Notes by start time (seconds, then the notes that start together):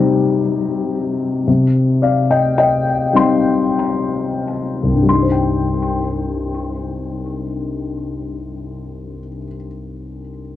Already playing: C3 G3 C4 D#4 G4 D#5
1.47 C3
2.02 D5 F5
2.31 D#5 G5
2.58 D#5 G5
3.13 G3 C4 D#4 G5 C6
4.83 C2
4.93 G2
5.03 G3
5.09 D#4 C6
5.22 C5
5.32 G5